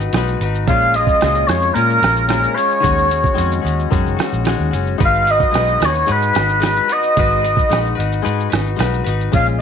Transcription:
Already playing: clean electric guitar D#4 F#4 B4
0.00 shaker
0.13 fingered electric bass B1, clean electric guitar G#3 D#4 F#4, cross-stick, closed hi-hat, shaker
0.18 clean electric guitar B4
0.27 shaker
0.40 fingered electric bass G#1, clean electric guitar F#4 B4, closed hi-hat, shaker
0.45 clean electric guitar D#4
0.55 shaker
0.67 fingered electric bass A#1, clean electric guitar A#2 G#3 C#4 F4, oboe F5, kick, closed hi-hat, shaker
0.81 shaker
0.94 clean electric guitar C#4 F4, oboe D#5, closed hi-hat, shaker
0.99 clean electric guitar G#3
1.07 kick, shaker
1.21 fingered electric bass C#2, clean electric guitar A#2 G#3 C#4 F4, cross-stick, closed hi-hat, shaker
1.35 shaker
1.47 fingered electric bass F2, clean electric guitar C#4 F4, oboe C#5, cross-stick, closed hi-hat, shaker
1.51 clean electric guitar G#3
1.62 shaker
1.74 clean electric guitar A#2 G#3 C#4 F4, fingered electric bass A#2, oboe A#4, closed hi-hat, shaker
1.90 shaker
2.02 fingered electric bass A#1, clean electric guitar C#4 F4, cross-stick, closed hi-hat, shaker
2.06 clean electric guitar G#3
2.17 shaker
2.28 clean electric guitar A#2 G#3 C#4 F4, oboe A#4, cross-stick, closed hi-hat, shaker
2.44 shaker
2.55 clean electric guitar G#3 C#4 F4, oboe C#5, closed hi-hat, shaker
2.71 shaker
2.80 fingered electric bass D#2, clean electric guitar D#3 G#3 C#4 F#4, kick
2.85 closed hi-hat, shaker
2.98 shaker
3.08 clean electric guitar G#3 C#4 F#4, closed hi-hat, shaker
3.24 kick, shaker
3.34 fingered electric bass F2, clean electric guitar D#3 G#3 C#4 F#4
3.38 closed hi-hat, shaker
3.52 shaker
3.62 fingered electric bass D#2, clean electric guitar G#3 C#4 F#4
3.67 closed hi-hat, shaker
3.80 shaker
3.91 fingered electric bass F#2, clean electric guitar D#3 G#3 C#4 F#4, kick, closed hi-hat, shaker
4.06 fingered electric bass F#1, shaker
4.17 clean electric guitar C#4 F#4, cross-stick, closed hi-hat, shaker
4.21 clean electric guitar G#3
4.33 fingered electric bass A#1, shaker
4.44 clean electric guitar D#3 G#3 C#4 F#4, cross-stick, closed hi-hat, shaker
4.59 fingered electric bass D#2, shaker
4.71 fingered electric bass F#1, clean electric guitar G#3 C#4 F#4, closed hi-hat, shaker
4.87 shaker
4.98 fingered electric bass G#1, clean electric guitar G#3 D#4 F#4 B4, kick, closed hi-hat, shaker
5.05 oboe F5
5.14 shaker
5.24 clean electric guitar D#4 F#4 B4, closed hi-hat, shaker
5.31 oboe D#5
5.40 kick, shaker
5.51 fingered electric bass B1, clean electric guitar G#3 D#4 F#4, closed hi-hat, shaker
5.55 clean electric guitar B4, cross-stick
5.68 shaker
5.80 fingered electric bass D#2, clean electric guitar D#4 F#4 B4, cross-stick, closed hi-hat, shaker
5.85 oboe C#5
5.94 shaker
6.06 fingered electric bass G#2, clean electric guitar G#3 D#4 F#4 B4, closed hi-hat, shaker
6.12 oboe B4
6.22 shaker
6.33 fingered electric bass G#1, clean electric guitar D#4 F#4 B4, cross-stick, closed hi-hat, shaker
6.49 shaker
6.60 clean electric guitar G#3 D#4 F#4 B4, cross-stick, closed hi-hat, shaker
6.65 oboe B4
6.76 shaker
6.88 clean electric guitar D#4 F#4 B4, closed hi-hat, shaker
6.93 oboe D#5
7.03 shaker
7.17 fingered electric bass G#1, clean electric guitar G#3 D#4 F#4 B4, kick, closed hi-hat, shaker
7.31 shaker
7.42 clean electric guitar F#4 B4, closed hi-hat, shaker
7.46 clean electric guitar D#4
7.57 kick, shaker
7.69 fingered electric bass A#1, clean electric guitar G#3 D#4 F#4 B4, cross-stick, closed hi-hat, shaker
7.85 shaker
7.95 fingered electric bass G#1, clean electric guitar D#4 F#4 B4
8.00 closed hi-hat, shaker
8.12 shaker
8.22 fingered electric bass G#2, clean electric guitar G#3 D#4 F#4 B4, closed hi-hat, shaker
8.40 shaker
8.50 fingered electric bass G#1, clean electric guitar F#4 B4, cross-stick, closed hi-hat, shaker
8.54 clean electric guitar D#4
8.66 shaker
8.76 fingered electric bass B1, clean electric guitar G#3 D#4 F#4 B4, closed hi-hat, shaker
8.80 cross-stick
8.93 shaker
9.04 fingered electric bass G#1, clean electric guitar D#4 F#4 B4, closed hi-hat, shaker
9.20 shaker
9.32 fingered electric bass A#1, clean electric guitar A#2 G#3 C#4 F4, oboe F5, kick, closed hi-hat, shaker
9.46 shaker
9.58 clean electric guitar F4

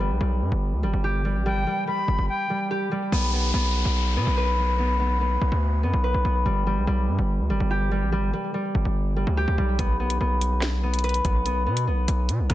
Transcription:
Already playing: 808-style bass G1, harp B3 B4
0.00 harp G3
0.10 808-style bass B1
0.21 808-style bass B1, harp G3
0.41 808-style bass G2
0.52 808-style bass G1
0.73 808-style bass D2
0.83 808-style bass G1, harp G3
0.93 808-style bass G1
1.04 harp G4
1.25 harp G3
1.35 808-style bass A1
1.45 harp G3, flute G5
1.51 808-style bass G1
1.67 harp G3
1.87 harp G3, flute B5
2.08 808-style bass G1
2.19 808-style bass G1
2.29 flute G5
2.50 harp G3
2.71 harp G4
2.91 harp G3
3.12 808-style bass B1, harp B3, downlifter
3.33 harp B3
3.54 808-style bass B1, harp B3
3.85 808-style bass B1
4.16 808-style bass B2, harp B3
4.27 808-style bass B1
4.37 harp B4
4.58 harp B3
4.79 harp B3
5.00 harp B3
5.21 harp B3
5.41 808-style bass B1
5.52 808-style bass D2
5.83 808-style bass F#2, harp B3
5.93 808-style bass B1
6.04 harp B4
6.14 808-style bass B1
6.25 808-style bass B1, harp B3
6.46 808-style bass G1, harp G3
6.67 harp G3
6.77 808-style bass B1
6.87 808-style bass B1, harp G3
7.08 808-style bass G2
7.19 808-style bass G1
7.39 808-style bass D2
7.50 808-style bass G1, harp G3
7.60 808-style bass G1
7.71 harp G4
7.91 harp G3
8.02 808-style bass A1
8.12 harp G3
8.17 808-style bass G1
8.33 harp G3
8.54 harp G3
8.75 808-style bass G1
8.85 808-style bass G1
9.16 harp G3
9.27 808-style bass D2
9.37 harp G4
9.48 808-style bass D2
9.58 808-style bass B1, harp G3
9.79 808-style bass B1, harp B3, kick, closed hi-hat
10.00 harp B3
10.10 closed hi-hat
10.20 808-style bass B1, harp B3
10.41 closed hi-hat
10.62 snare, clap, closed hi-hat
10.83 harp B3
10.94 closed hi-hat
10.99 closed hi-hat
11.04 harp B4, closed hi-hat
11.09 closed hi-hat
11.14 closed hi-hat
11.25 808-style bass B1, harp B3, kick, closed hi-hat
11.46 harp B3, closed hi-hat
11.66 808-style bass B2, harp B3
11.77 closed hi-hat
11.87 808-style bass B1, harp B3
12.08 808-style bass B1, closed hi-hat
12.29 808-style bass B2, closed hi-hat
12.39 808-style bass B1
12.50 808-style bass B2, harp B3, kick, cross-stick, closed hi-hat

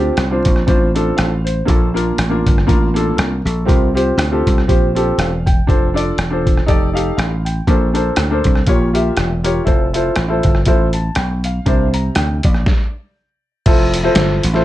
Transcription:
Already playing: grand piano D3 C4 D4 F4 G4
0.17 slap bass C2, cross-stick, closed hi-hat
0.30 grand piano C4 D4 F4 C5
0.45 slap bass A#1, kick, closed hi-hat
0.56 cross-stick
0.66 slap bass A1, grand piano C4 D4 F4 C5, kick, closed hi-hat
0.95 grand piano C4 D4 F4 A4, closed hi-hat
1.17 slap bass A1, grand piano F5, cross-stick, closed hi-hat
1.45 grand piano C5, closed hi-hat
1.65 slap bass A#1, grand piano A#2 A#3 D4 F4 A4, kick, closed hi-hat
1.94 grand piano A#3 D4 F4 A#4, closed hi-hat
2.18 slap bass A1, cross-stick, closed hi-hat
2.30 grand piano A#3 D4 F4 A#4
2.46 slap bass G1, kick, closed hi-hat
2.58 cross-stick
2.67 slap bass A1, grand piano A#3 D4 F4 A#4, kick, closed hi-hat
2.94 grand piano A#3 D4 F4 A4, closed hi-hat
3.17 slap bass C2, grand piano A#4, cross-stick, closed hi-hat
3.45 slap bass A#1, grand piano A4, closed hi-hat
3.65 slap bass C2, grand piano C3 C4 F4 G4 A#4, kick, closed hi-hat
3.94 grand piano C4 F4 G4 C5, closed hi-hat
4.17 slap bass D2, cross-stick, closed hi-hat
4.31 grand piano C4 F4 G4 A4
4.47 slap bass C2, kick, closed hi-hat
4.58 cross-stick
4.67 slap bass A#1, grand piano C4 F4 G4 C5, kick, closed hi-hat
4.95 grand piano C4 F4 G4 A4, closed hi-hat
5.18 slap bass E1, grand piano F5, cross-stick, closed hi-hat
5.46 grand piano G5, kick, closed hi-hat
5.67 slap bass F1, grand piano D4 F4 A4 C5, kick, closed hi-hat
5.94 grand piano D4 F4 A4 D5, closed hi-hat
6.18 slap bass E1, cross-stick, closed hi-hat
6.31 grand piano D4 F4 A4 C5
6.47 kick, closed hi-hat
6.57 cross-stick
6.66 slap bass F1, grand piano D#4 G4 A4 D5, kick, closed hi-hat
6.93 grand piano D#4 G4 A4 F5, closed hi-hat
7.17 slap bass A1, grand piano F5, cross-stick, closed hi-hat
7.45 grand piano G5, closed hi-hat
7.67 slap bass A#1, grand piano A#2 D4 A4 A#4 C5, kick, closed hi-hat
7.94 grand piano D4 A4 A#4 C5, closed hi-hat
8.16 slap bass D2, cross-stick, closed hi-hat
8.31 grand piano D4 A4 A#4 C5
8.44 slap bass C2, kick, closed hi-hat
8.55 cross-stick
8.67 slap bass A#1, grand piano A#2 F4 G4 A#4 C#5, kick, closed hi-hat
8.93 grand piano F4 G4 A#4 E5, closed hi-hat
9.17 slap bass E1, cross-stick, closed hi-hat
9.44 grand piano F4 G4 A#4 C#5, closed hi-hat
9.64 slap bass F1, grand piano E4 F4 A4 C5, kick, closed hi-hat
9.94 grand piano E4 F4 A4 C5, closed hi-hat
10.16 slap bass A1, cross-stick, closed hi-hat
10.28 grand piano E4 F4 A4 C5
10.43 slap bass G1, kick, closed hi-hat
10.55 cross-stick
10.65 slap bass A1, grand piano E4 F4 A4 C5, kick, closed hi-hat
10.93 grand piano A5, closed hi-hat
11.15 slap bass B1, grand piano G5, cross-stick, closed hi-hat
11.44 grand piano F5, closed hi-hat
11.66 slap bass C2, grand piano C3 D4 E4 A#4 C5, kick, closed hi-hat
11.94 grand piano A#5, closed hi-hat
12.15 slap bass D2, grand piano G5, cross-stick, closed hi-hat
12.43 slap bass A#1, grand piano D5, kick, closed hi-hat
12.54 cross-stick
12.66 kick, snare
13.66 slap bass F1, grand piano E4 F4 A4 C5, kick, closed hi-hat, crash
13.94 closed hi-hat
14.03 grand piano E4 F4 A4 C5
14.15 slap bass G1, snare, closed hi-hat
14.43 slap bass A1, closed hi-hat
14.54 grand piano E4 F4 A4 C5, snare

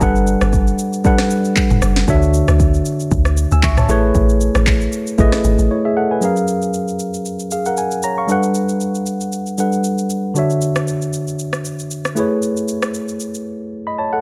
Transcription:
Already playing: tine electric piano G#5
0.01 log drum bass G1, tine electric piano G3 D4 A4 B4 F#5, kick, shaker
0.16 shaker
0.27 shaker
0.41 log drum bass G1, cross-stick, shaker
0.53 kick, shaker
0.67 shaker
0.79 shaker
0.93 shaker
1.04 tine electric piano G3 D4 A4 B4 F#5, kick, shaker
1.18 cross-stick, snare, shaker
1.30 shaker
1.45 shaker
1.56 kick, clap, shaker
1.70 log drum bass F#1, mid tom, shaker
1.82 log drum bass F#1, cross-stick, shaker
1.96 snare
2.08 log drum bass D2, tine electric piano D3 D4 F#4 C#5 E5, kick, shaker
2.22 shaker
2.34 shaker
2.48 log drum bass D2, cross-stick, shaker
2.60 kick, shaker
2.74 shaker
2.85 shaker
3.00 shaker
3.11 log drum bass D2, kick, shaker
3.25 cross-stick, shaker
3.37 shaker
3.51 log drum bass D2, tine electric piano G#5 E6, shaker
3.63 log drum bass C#2, tine electric piano E5 C#6, kick, clap, shaker
3.77 tine electric piano C#5 A5, cross-stick, mid tom, shaker
3.89 log drum bass A1, tine electric piano A3 E4 G#4 B4 C#5, shaker
4.15 log drum bass A1, kick, shaker
4.29 shaker
4.41 shaker
4.55 log drum bass A1, cross-stick, shaker
4.67 kick, clap, shaker
4.81 shaker
4.92 shaker
5.07 shaker
5.18 log drum bass G#1, tine electric piano A3 E4 G#4 B4 D#5, kick, shaker
5.32 cross-stick, snare, shaker
5.44 log drum bass G#1, shaker
5.58 log drum bass A1, shaker
5.71 tine electric piano E4 C#5
5.85 tine electric piano G#4 E5
5.97 tine electric piano A4 F#5
6.11 tine electric piano B4 G#5
6.20 tine electric piano F#3 C#4 G#4 A#4, shaker
6.25 tine electric piano F5
6.36 shaker
6.48 shaker
6.62 shaker
6.74 shaker
6.88 shaker
6.99 shaker
7.14 shaker
7.25 shaker
7.39 shaker
7.51 tine electric piano G#4 F5, shaker
7.65 tine electric piano A#4 F#5, shaker
7.77 tine electric piano G#5, shaker
7.91 shaker
8.03 tine electric piano C#5 A#5, shaker
8.18 tine electric piano F5 C#6
8.27 tine electric piano G3 D4 A4 B4, shaker
8.32 tine electric piano F#5
8.43 shaker
8.55 shaker
8.69 shaker
8.80 shaker
8.95 shaker
9.06 shaker
9.21 shaker
9.32 shaker
9.46 shaker
9.58 tine electric piano G3 D4 A4 B4 F#5, shaker
9.72 shaker
9.84 shaker
9.98 shaker
10.10 shaker
10.34 tine electric piano D3 D4 F#4 C#5, shaker
10.39 tine electric piano E5
10.50 shaker
10.62 shaker
10.76 cross-stick, shaker
10.87 shaker
11.02 shaker
11.13 shaker
11.28 shaker
11.39 shaker
11.53 cross-stick, shaker
11.65 shaker
11.79 shaker
11.91 shaker
12.05 cross-stick, shaker
12.15 tine electric piano A3 E4 G#4 B4, shaker
12.20 tine electric piano C#5
12.42 shaker
12.57 shaker
12.68 shaker
12.82 cross-stick, shaker
12.94 shaker
13.08 shaker
13.20 shaker
13.34 shaker
13.87 tine electric piano D#5 B5
13.98 tine electric piano C#5 A5
14.13 tine electric piano A4 F#5

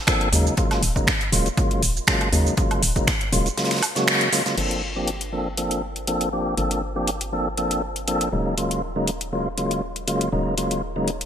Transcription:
0.07 tonewheel organ F3 A#3 C4 D4 A4, finger snap, kick, snare, closed hi-hat, shaker
0.21 closed hi-hat
0.32 fm bass D#2, tonewheel organ C#3 F#3 G#3 A#3 D#4, closed hi-hat, open hi-hat, shaker
0.47 shaker
0.57 tonewheel organ C#3 F#3 G#3 A#3 F4, kick, closed hi-hat, shaker
0.71 snare, closed hi-hat, high woodblock
0.82 fm bass D#1, closed hi-hat, open hi-hat, shaker
0.96 tonewheel organ C#3 F#3 G#3 A#3 D#4, kick, closed hi-hat, shaker
1.07 finger snap, kick, snare, closed hi-hat, shaker
1.21 closed hi-hat
1.32 fm bass D#1, tonewheel organ C#3 F#3 G#3 A#3 F4, closed hi-hat, open hi-hat, shaker
1.46 closed hi-hat, shaker
1.57 tonewheel organ C#3 F#3 G#3 A#3 F4, kick, closed hi-hat, shaker
1.71 closed hi-hat
1.82 fm bass D#1, closed hi-hat, open hi-hat, shaker
1.97 shaker
2.07 tonewheel organ C#3 F#3 G#3 A#3 F4, finger snap, kick, snare, closed hi-hat, shaker
2.21 closed hi-hat, high woodblock
2.32 fm bass D#2, tonewheel organ C#3 F#3 G#3 A#3 D#4, closed hi-hat, open hi-hat, shaker
2.47 shaker
2.57 tonewheel organ C#3 F#3 G#3 A#3 F4, kick, closed hi-hat, shaker
2.71 closed hi-hat, high woodblock
2.82 fm bass D#1, open hi-hat, shaker
2.96 tonewheel organ C#3 F#3 G#3 A#3 D#4, kick, closed hi-hat, shaker
3.07 finger snap, kick, snare, closed hi-hat, shaker
3.21 closed hi-hat
3.32 fm bass D#1, tonewheel organ C#3 F#3 G#3 A#3 F4, closed hi-hat, open hi-hat, shaker
3.46 closed hi-hat, shaker
3.57 tonewheel organ C#3 F#3 G#3 A#3 F4, snare, closed hi-hat, shaker
3.64 snare, closed hi-hat
3.71 finger snap, snare, closed hi-hat
3.77 snare, closed hi-hat
3.83 open hi-hat, high woodblock, shaker
3.95 tonewheel organ C#3 F#3 G#3 A#3 F#4, snare, closed hi-hat, shaker
4.07 finger snap, snare, closed hi-hat, shaker
4.21 closed hi-hat
4.32 tonewheel organ C#3 F#3 G#3 A#3 F4, snare, closed hi-hat, open hi-hat, shaker
4.46 tonewheel organ C#3 F#3 G#3 A#3 F4, snare, closed hi-hat, shaker
4.57 fm bass G1, tonewheel organ F3 A#3 C4 D4 A4, closed hi-hat, crash
4.71 closed hi-hat
4.96 tonewheel organ F3 A#3 C4 D4 G4
5.08 closed hi-hat
5.21 closed hi-hat
5.32 tonewheel organ F3 A#3 C4 D4 A4
5.57 tonewheel organ F3 A#3 C4 D4 A4, closed hi-hat
5.71 closed hi-hat
5.96 closed hi-hat
6.07 tonewheel organ F3 A#3 C4 D4 A4, closed hi-hat
6.21 closed hi-hat
6.32 tonewheel organ F3 A#3 C4 D4 G4
6.57 fm bass G1, tonewheel organ F3 A#3 C4 D4 A4, closed hi-hat
6.71 closed hi-hat
6.96 tonewheel organ F3 A#3 C4 D4 G4
7.08 closed hi-hat
7.21 closed hi-hat
7.32 tonewheel organ F3 A#3 C4 D4 A4
7.57 tonewheel organ F3 A#3 C4 D4 A4, closed hi-hat
7.71 closed hi-hat
7.96 closed hi-hat
8.07 tonewheel organ F3 A#3 C4 D4 A4, closed hi-hat
8.21 closed hi-hat
8.32 fm bass D#1, tonewheel organ C#3 F#3 G#3 A#3 D#4
8.57 tonewheel organ C#3 F#3 G#3 A#3 F4, closed hi-hat
8.71 closed hi-hat
8.96 tonewheel organ C#3 F#3 G#3 A#3 D#4
9.08 closed hi-hat
9.21 closed hi-hat
9.32 tonewheel organ C#3 F#3 G#3 A#3 F4
9.57 tonewheel organ C#3 F#3 G#3 A#3 F4, closed hi-hat
9.71 closed hi-hat
9.96 closed hi-hat
10.07 tonewheel organ C#3 F#3 G#3 A#3 F4, closed hi-hat
10.21 closed hi-hat
10.32 fm bass D#1, tonewheel organ C#3 F#3 G#3 A#3 D#4
10.57 tonewheel organ C#3 F#3 G#3 A#3 F4, closed hi-hat
10.71 closed hi-hat
10.96 tonewheel organ C#3 F#3 G#3 A#3 D#4
11.08 closed hi-hat
11.21 closed hi-hat

